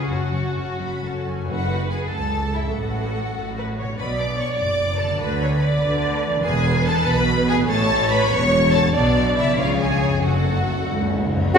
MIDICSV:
0, 0, Header, 1, 12, 480
1, 0, Start_track
1, 0, Key_signature, 3, "minor"
1, 0, Tempo, 465839
1, 93, Time_signature, 6, 3, 24, 8
1, 1531, Tempo, 413508
1, 9211, Tempo, 422238
1, 10651, Tempo, 437318
1, 13081, End_track
2, 0, Start_track
2, 0, Title_t, "Violin section"
2, 0, Program_c, 0, 48
2, 104, Note_on_c, 0, 81, 44
2, 332, Note_off_c, 0, 81, 0
2, 345, Note_on_c, 0, 81, 40
2, 570, Note_off_c, 0, 81, 0
2, 582, Note_on_c, 0, 81, 44
2, 818, Note_off_c, 0, 81, 0
2, 827, Note_on_c, 0, 83, 61
2, 1048, Note_off_c, 0, 83, 0
2, 1071, Note_on_c, 0, 81, 46
2, 1307, Note_off_c, 0, 81, 0
2, 1318, Note_on_c, 0, 80, 54
2, 1532, Note_on_c, 0, 78, 85
2, 1539, Note_off_c, 0, 80, 0
2, 1985, Note_off_c, 0, 78, 0
2, 2015, Note_on_c, 0, 80, 79
2, 2108, Note_off_c, 0, 80, 0
2, 2258, Note_on_c, 0, 81, 77
2, 2736, Note_off_c, 0, 81, 0
2, 2750, Note_on_c, 0, 76, 72
2, 2991, Note_off_c, 0, 76, 0
2, 2995, Note_on_c, 0, 78, 75
2, 4201, Note_off_c, 0, 78, 0
2, 4433, Note_on_c, 0, 83, 88
2, 4655, Note_off_c, 0, 83, 0
2, 4666, Note_on_c, 0, 86, 85
2, 4905, Note_off_c, 0, 86, 0
2, 4910, Note_on_c, 0, 85, 88
2, 5003, Note_off_c, 0, 85, 0
2, 5142, Note_on_c, 0, 86, 94
2, 5606, Note_off_c, 0, 86, 0
2, 5610, Note_on_c, 0, 81, 84
2, 5845, Note_on_c, 0, 83, 81
2, 5850, Note_off_c, 0, 81, 0
2, 7042, Note_off_c, 0, 83, 0
2, 7278, Note_on_c, 0, 80, 108
2, 7730, Note_off_c, 0, 80, 0
2, 7770, Note_on_c, 0, 81, 111
2, 8009, Note_off_c, 0, 81, 0
2, 8025, Note_on_c, 0, 83, 116
2, 8494, Note_off_c, 0, 83, 0
2, 8498, Note_on_c, 0, 80, 105
2, 8591, Note_off_c, 0, 80, 0
2, 8729, Note_on_c, 0, 81, 121
2, 9201, Note_off_c, 0, 81, 0
2, 9203, Note_on_c, 0, 83, 117
2, 9440, Note_on_c, 0, 85, 123
2, 9446, Note_off_c, 0, 83, 0
2, 9917, Note_on_c, 0, 81, 111
2, 9925, Note_off_c, 0, 85, 0
2, 10147, Note_on_c, 0, 74, 113
2, 10162, Note_off_c, 0, 81, 0
2, 10629, Note_off_c, 0, 74, 0
2, 10650, Note_on_c, 0, 76, 102
2, 10880, Note_off_c, 0, 76, 0
2, 10881, Note_on_c, 0, 77, 101
2, 11112, Note_on_c, 0, 80, 95
2, 11116, Note_off_c, 0, 77, 0
2, 11591, Note_on_c, 0, 78, 95
2, 11593, Note_off_c, 0, 80, 0
2, 12778, Note_off_c, 0, 78, 0
2, 13041, Note_on_c, 0, 78, 97
2, 13081, Note_off_c, 0, 78, 0
2, 13081, End_track
3, 0, Start_track
3, 0, Title_t, "Flute"
3, 0, Program_c, 1, 73
3, 13035, Note_on_c, 1, 78, 86
3, 13081, Note_off_c, 1, 78, 0
3, 13081, End_track
4, 0, Start_track
4, 0, Title_t, "Viola section"
4, 0, Program_c, 2, 48
4, 99, Note_on_c, 2, 61, 49
4, 100, Note_on_c, 2, 66, 49
4, 327, Note_off_c, 2, 61, 0
4, 329, Note_off_c, 2, 66, 0
4, 339, Note_on_c, 2, 61, 41
4, 342, Note_on_c, 2, 66, 43
4, 574, Note_off_c, 2, 66, 0
4, 576, Note_off_c, 2, 61, 0
4, 587, Note_on_c, 2, 61, 43
4, 587, Note_on_c, 2, 66, 41
4, 817, Note_off_c, 2, 61, 0
4, 817, Note_off_c, 2, 66, 0
4, 829, Note_on_c, 2, 61, 38
4, 829, Note_on_c, 2, 66, 41
4, 1058, Note_off_c, 2, 66, 0
4, 1061, Note_off_c, 2, 61, 0
4, 1071, Note_on_c, 2, 66, 40
4, 1075, Note_on_c, 2, 61, 44
4, 1299, Note_off_c, 2, 61, 0
4, 1303, Note_off_c, 2, 66, 0
4, 1311, Note_on_c, 2, 61, 45
4, 1314, Note_on_c, 2, 66, 43
4, 1530, Note_off_c, 2, 61, 0
4, 1532, Note_off_c, 2, 66, 0
4, 1535, Note_on_c, 2, 71, 66
4, 2217, Note_off_c, 2, 71, 0
4, 2266, Note_on_c, 2, 69, 53
4, 3711, Note_off_c, 2, 69, 0
4, 3725, Note_on_c, 2, 69, 57
4, 3818, Note_off_c, 2, 69, 0
4, 3966, Note_on_c, 2, 71, 66
4, 4059, Note_off_c, 2, 71, 0
4, 4200, Note_on_c, 2, 73, 64
4, 4430, Note_on_c, 2, 74, 77
4, 4432, Note_off_c, 2, 73, 0
4, 5822, Note_off_c, 2, 74, 0
4, 5840, Note_on_c, 2, 71, 84
4, 6080, Note_off_c, 2, 71, 0
4, 6087, Note_on_c, 2, 73, 79
4, 6179, Note_off_c, 2, 73, 0
4, 6320, Note_on_c, 2, 74, 86
4, 7259, Note_off_c, 2, 74, 0
4, 7280, Note_on_c, 2, 71, 87
4, 8695, Note_off_c, 2, 71, 0
4, 8723, Note_on_c, 2, 73, 98
4, 10139, Note_off_c, 2, 73, 0
4, 10159, Note_on_c, 2, 74, 87
4, 10866, Note_off_c, 2, 74, 0
4, 10891, Note_on_c, 2, 73, 76
4, 11609, Note_on_c, 2, 69, 67
4, 11611, Note_off_c, 2, 73, 0
4, 12668, Note_off_c, 2, 69, 0
4, 13081, End_track
5, 0, Start_track
5, 0, Title_t, "Violin section"
5, 0, Program_c, 3, 48
5, 89, Note_on_c, 3, 66, 67
5, 1277, Note_off_c, 3, 66, 0
5, 1540, Note_on_c, 3, 66, 69
5, 1989, Note_off_c, 3, 66, 0
5, 2013, Note_on_c, 3, 68, 71
5, 2245, Note_on_c, 3, 69, 67
5, 2254, Note_off_c, 3, 68, 0
5, 2739, Note_off_c, 3, 69, 0
5, 2750, Note_on_c, 3, 64, 65
5, 2843, Note_off_c, 3, 64, 0
5, 2992, Note_on_c, 3, 66, 60
5, 4175, Note_off_c, 3, 66, 0
5, 4431, Note_on_c, 3, 71, 73
5, 4524, Note_off_c, 3, 71, 0
5, 4676, Note_on_c, 3, 74, 70
5, 4895, Note_on_c, 3, 73, 79
5, 4905, Note_off_c, 3, 74, 0
5, 5121, Note_on_c, 3, 74, 74
5, 5136, Note_off_c, 3, 73, 0
5, 5590, Note_on_c, 3, 69, 72
5, 5604, Note_off_c, 3, 74, 0
5, 5841, Note_off_c, 3, 69, 0
5, 5843, Note_on_c, 3, 71, 70
5, 7016, Note_off_c, 3, 71, 0
5, 7285, Note_on_c, 3, 68, 90
5, 7734, Note_off_c, 3, 68, 0
5, 7764, Note_on_c, 3, 69, 103
5, 8006, Note_off_c, 3, 69, 0
5, 8007, Note_on_c, 3, 71, 89
5, 8486, Note_off_c, 3, 71, 0
5, 8488, Note_on_c, 3, 68, 111
5, 8581, Note_off_c, 3, 68, 0
5, 8727, Note_on_c, 3, 69, 102
5, 9200, Note_off_c, 3, 69, 0
5, 9211, Note_on_c, 3, 71, 105
5, 9422, Note_on_c, 3, 73, 98
5, 9450, Note_off_c, 3, 71, 0
5, 9908, Note_on_c, 3, 69, 112
5, 9916, Note_off_c, 3, 73, 0
5, 9999, Note_off_c, 3, 69, 0
5, 10149, Note_on_c, 3, 62, 97
5, 10624, Note_on_c, 3, 64, 83
5, 10630, Note_off_c, 3, 62, 0
5, 10863, Note_on_c, 3, 65, 89
5, 10868, Note_off_c, 3, 64, 0
5, 11093, Note_on_c, 3, 68, 82
5, 11112, Note_off_c, 3, 65, 0
5, 11583, Note_off_c, 3, 68, 0
5, 11598, Note_on_c, 3, 66, 79
5, 12805, Note_off_c, 3, 66, 0
5, 13039, Note_on_c, 3, 61, 62
5, 13042, Note_off_c, 3, 61, 0
5, 13042, Note_on_c, 3, 61, 64
5, 13081, Note_off_c, 3, 61, 0
5, 13081, End_track
6, 0, Start_track
6, 0, Title_t, "Clarinet"
6, 0, Program_c, 4, 71
6, 13035, Note_on_c, 4, 66, 69
6, 13081, Note_off_c, 4, 66, 0
6, 13081, End_track
7, 0, Start_track
7, 0, Title_t, "Harp"
7, 0, Program_c, 5, 46
7, 0, Note_on_c, 5, 49, 57
7, 0, Note_on_c, 5, 56, 46
7, 0, Note_on_c, 5, 59, 39
7, 0, Note_on_c, 5, 61, 42
7, 0, Note_on_c, 5, 65, 47
7, 0, Note_on_c, 5, 68, 48
7, 88, Note_on_c, 5, 42, 52
7, 107, Note_off_c, 5, 68, 0
7, 108, Note_off_c, 5, 59, 0
7, 109, Note_off_c, 5, 49, 0
7, 109, Note_off_c, 5, 65, 0
7, 110, Note_off_c, 5, 56, 0
7, 336, Note_on_c, 5, 49, 36
7, 568, Note_off_c, 5, 61, 0
7, 580, Note_on_c, 5, 61, 36
7, 816, Note_on_c, 5, 66, 40
7, 1058, Note_on_c, 5, 69, 42
7, 1287, Note_off_c, 5, 66, 0
7, 1300, Note_on_c, 5, 66, 39
7, 1330, Note_off_c, 5, 42, 0
7, 1343, Note_on_c, 5, 42, 53
7, 1387, Note_on_c, 5, 57, 48
7, 1422, Note_off_c, 5, 61, 0
7, 1434, Note_on_c, 5, 61, 41
7, 1467, Note_off_c, 5, 66, 0
7, 1479, Note_on_c, 5, 66, 40
7, 1550, Note_off_c, 5, 49, 0
7, 2780, Note_on_c, 5, 45, 56
7, 2831, Note_on_c, 5, 54, 47
7, 2870, Note_off_c, 5, 61, 0
7, 2884, Note_on_c, 5, 61, 46
7, 2903, Note_off_c, 5, 42, 0
7, 2921, Note_off_c, 5, 66, 0
7, 2935, Note_on_c, 5, 66, 44
7, 4222, Note_on_c, 5, 47, 50
7, 4271, Note_on_c, 5, 59, 47
7, 4329, Note_on_c, 5, 62, 52
7, 4350, Note_off_c, 5, 45, 0
7, 4361, Note_off_c, 5, 66, 0
7, 4374, Note_off_c, 5, 57, 0
7, 4375, Note_on_c, 5, 66, 42
7, 4402, Note_off_c, 5, 61, 0
7, 4453, Note_off_c, 5, 69, 0
7, 5638, Note_on_c, 5, 50, 60
7, 5678, Note_off_c, 5, 59, 0
7, 5692, Note_on_c, 5, 59, 56
7, 5729, Note_off_c, 5, 62, 0
7, 5743, Note_on_c, 5, 62, 46
7, 5765, Note_off_c, 5, 47, 0
7, 5784, Note_off_c, 5, 66, 0
7, 5798, Note_on_c, 5, 66, 51
7, 7071, Note_on_c, 5, 52, 73
7, 7107, Note_off_c, 5, 59, 0
7, 7121, Note_on_c, 5, 59, 54
7, 7160, Note_off_c, 5, 62, 0
7, 7174, Note_on_c, 5, 62, 59
7, 7195, Note_off_c, 5, 50, 0
7, 7223, Note_off_c, 5, 54, 0
7, 7226, Note_on_c, 5, 64, 56
7, 7275, Note_off_c, 5, 66, 0
7, 8509, Note_on_c, 5, 45, 79
7, 8561, Note_on_c, 5, 57, 66
7, 8611, Note_on_c, 5, 61, 67
7, 8638, Note_off_c, 5, 52, 0
7, 8650, Note_off_c, 5, 64, 0
7, 8664, Note_off_c, 5, 59, 0
7, 8664, Note_on_c, 5, 64, 59
7, 8690, Note_off_c, 5, 62, 0
7, 9958, Note_on_c, 5, 47, 76
7, 10005, Note_on_c, 5, 54, 67
7, 10055, Note_on_c, 5, 59, 57
7, 10082, Note_off_c, 5, 45, 0
7, 10107, Note_off_c, 5, 57, 0
7, 10111, Note_on_c, 5, 62, 66
7, 10132, Note_off_c, 5, 61, 0
7, 10158, Note_off_c, 5, 64, 0
7, 10678, Note_on_c, 5, 49, 68
7, 10728, Note_on_c, 5, 53, 52
7, 10762, Note_off_c, 5, 59, 0
7, 10775, Note_on_c, 5, 59, 57
7, 10802, Note_off_c, 5, 47, 0
7, 10814, Note_off_c, 5, 62, 0
7, 10825, Note_off_c, 5, 54, 0
7, 10827, Note_on_c, 5, 62, 55
7, 11399, Note_on_c, 5, 42, 57
7, 11444, Note_on_c, 5, 54, 48
7, 11496, Note_on_c, 5, 57, 49
7, 11524, Note_off_c, 5, 49, 0
7, 11546, Note_on_c, 5, 61, 54
7, 11549, Note_off_c, 5, 53, 0
7, 11573, Note_off_c, 5, 59, 0
7, 11599, Note_off_c, 5, 62, 0
7, 12826, Note_off_c, 5, 42, 0
7, 12840, Note_on_c, 5, 42, 67
7, 12878, Note_off_c, 5, 54, 0
7, 12891, Note_on_c, 5, 54, 50
7, 12923, Note_off_c, 5, 61, 0
7, 12937, Note_on_c, 5, 61, 52
7, 12986, Note_on_c, 5, 66, 51
7, 13081, Note_off_c, 5, 42, 0
7, 13081, Note_off_c, 5, 54, 0
7, 13081, Note_off_c, 5, 57, 0
7, 13081, Note_off_c, 5, 61, 0
7, 13081, Note_off_c, 5, 66, 0
7, 13081, End_track
8, 0, Start_track
8, 0, Title_t, "Bassoon"
8, 0, Program_c, 6, 70
8, 13045, Note_on_c, 6, 49, 73
8, 13081, Note_off_c, 6, 49, 0
8, 13081, End_track
9, 0, Start_track
9, 0, Title_t, "Cello section"
9, 0, Program_c, 7, 48
9, 85, Note_on_c, 7, 42, 54
9, 168, Note_off_c, 7, 42, 0
9, 323, Note_on_c, 7, 42, 43
9, 406, Note_off_c, 7, 42, 0
9, 570, Note_on_c, 7, 42, 49
9, 652, Note_off_c, 7, 42, 0
9, 810, Note_on_c, 7, 42, 49
9, 893, Note_off_c, 7, 42, 0
9, 1052, Note_on_c, 7, 42, 50
9, 1135, Note_off_c, 7, 42, 0
9, 1293, Note_on_c, 7, 42, 46
9, 1376, Note_off_c, 7, 42, 0
9, 1530, Note_on_c, 7, 42, 67
9, 2139, Note_off_c, 7, 42, 0
9, 2263, Note_on_c, 7, 37, 61
9, 2869, Note_off_c, 7, 37, 0
9, 2985, Note_on_c, 7, 45, 74
9, 3593, Note_off_c, 7, 45, 0
9, 3719, Note_on_c, 7, 45, 69
9, 4318, Note_off_c, 7, 45, 0
9, 4435, Note_on_c, 7, 47, 70
9, 5025, Note_off_c, 7, 47, 0
9, 5138, Note_on_c, 7, 42, 67
9, 5732, Note_off_c, 7, 42, 0
9, 5840, Note_on_c, 7, 50, 72
9, 6444, Note_off_c, 7, 50, 0
9, 6568, Note_on_c, 7, 50, 81
9, 7163, Note_off_c, 7, 50, 0
9, 7290, Note_on_c, 7, 40, 95
9, 7891, Note_off_c, 7, 40, 0
9, 8005, Note_on_c, 7, 47, 89
9, 8604, Note_off_c, 7, 47, 0
9, 8723, Note_on_c, 7, 45, 96
9, 9327, Note_off_c, 7, 45, 0
9, 9447, Note_on_c, 7, 40, 93
9, 10048, Note_off_c, 7, 40, 0
9, 10161, Note_on_c, 7, 47, 92
9, 10763, Note_off_c, 7, 47, 0
9, 10881, Note_on_c, 7, 49, 79
9, 11484, Note_off_c, 7, 49, 0
9, 11603, Note_on_c, 7, 42, 72
9, 12208, Note_off_c, 7, 42, 0
9, 12322, Note_on_c, 7, 37, 73
9, 12927, Note_off_c, 7, 37, 0
9, 13048, Note_on_c, 7, 42, 74
9, 13081, Note_off_c, 7, 42, 0
9, 13081, End_track
10, 0, Start_track
10, 0, Title_t, "Timpani"
10, 0, Program_c, 8, 47
10, 1526, Note_on_c, 8, 42, 86
10, 2213, Note_off_c, 8, 42, 0
10, 11609, Note_on_c, 8, 42, 38
10, 11682, Note_off_c, 8, 42, 0
10, 11695, Note_on_c, 8, 42, 41
10, 11764, Note_off_c, 8, 42, 0
10, 11777, Note_on_c, 8, 42, 38
10, 11854, Note_off_c, 8, 42, 0
10, 11867, Note_on_c, 8, 42, 46
10, 11947, Note_off_c, 8, 42, 0
10, 11958, Note_on_c, 8, 42, 47
10, 12035, Note_off_c, 8, 42, 0
10, 12048, Note_on_c, 8, 42, 51
10, 12117, Note_off_c, 8, 42, 0
10, 12130, Note_on_c, 8, 42, 50
10, 12198, Note_off_c, 8, 42, 0
10, 12211, Note_on_c, 8, 42, 56
10, 12286, Note_off_c, 8, 42, 0
10, 12300, Note_on_c, 8, 42, 51
10, 12371, Note_off_c, 8, 42, 0
10, 12384, Note_on_c, 8, 42, 59
10, 12456, Note_off_c, 8, 42, 0
10, 12470, Note_on_c, 8, 42, 68
10, 12543, Note_off_c, 8, 42, 0
10, 12556, Note_on_c, 8, 42, 80
10, 12617, Note_off_c, 8, 42, 0
10, 12630, Note_on_c, 8, 42, 71
10, 12708, Note_off_c, 8, 42, 0
10, 12721, Note_on_c, 8, 42, 78
10, 12788, Note_off_c, 8, 42, 0
10, 12802, Note_on_c, 8, 42, 83
10, 12878, Note_off_c, 8, 42, 0
10, 12891, Note_on_c, 8, 42, 89
10, 12971, Note_off_c, 8, 42, 0
10, 13081, End_track
11, 0, Start_track
11, 0, Title_t, "Double bass section"
11, 0, Program_c, 10, 48
11, 93, Note_on_c, 10, 30, 54
11, 175, Note_off_c, 10, 30, 0
11, 345, Note_on_c, 10, 30, 42
11, 428, Note_off_c, 10, 30, 0
11, 584, Note_on_c, 10, 30, 49
11, 666, Note_off_c, 10, 30, 0
11, 830, Note_on_c, 10, 30, 40
11, 912, Note_off_c, 10, 30, 0
11, 1074, Note_on_c, 10, 30, 42
11, 1157, Note_off_c, 10, 30, 0
11, 1315, Note_on_c, 10, 30, 41
11, 1397, Note_off_c, 10, 30, 0
11, 1544, Note_on_c, 10, 30, 65
11, 2146, Note_off_c, 10, 30, 0
11, 2267, Note_on_c, 10, 37, 65
11, 2871, Note_off_c, 10, 37, 0
11, 2991, Note_on_c, 10, 33, 68
11, 3596, Note_off_c, 10, 33, 0
11, 3719, Note_on_c, 10, 33, 59
11, 4318, Note_off_c, 10, 33, 0
11, 4437, Note_on_c, 10, 35, 72
11, 5026, Note_off_c, 10, 35, 0
11, 5142, Note_on_c, 10, 30, 63
11, 5733, Note_off_c, 10, 30, 0
11, 5842, Note_on_c, 10, 38, 84
11, 6445, Note_off_c, 10, 38, 0
11, 6564, Note_on_c, 10, 38, 73
11, 7161, Note_off_c, 10, 38, 0
11, 7279, Note_on_c, 10, 28, 99
11, 7885, Note_off_c, 10, 28, 0
11, 8012, Note_on_c, 10, 35, 83
11, 8608, Note_off_c, 10, 35, 0
11, 8733, Note_on_c, 10, 33, 99
11, 9332, Note_off_c, 10, 33, 0
11, 9455, Note_on_c, 10, 28, 95
11, 10052, Note_off_c, 10, 28, 0
11, 10174, Note_on_c, 10, 35, 89
11, 10769, Note_off_c, 10, 35, 0
11, 10882, Note_on_c, 10, 37, 86
11, 11485, Note_off_c, 10, 37, 0
11, 11607, Note_on_c, 10, 30, 75
11, 12210, Note_off_c, 10, 30, 0
11, 12329, Note_on_c, 10, 37, 64
11, 12930, Note_off_c, 10, 37, 0
11, 13048, Note_on_c, 10, 30, 74
11, 13081, Note_off_c, 10, 30, 0
11, 13081, End_track
12, 0, Start_track
12, 0, Title_t, "Tam-tam"
12, 13038, Note_on_c, 9, 52, 59
12, 13081, Note_off_c, 9, 52, 0
12, 13081, End_track
0, 0, End_of_file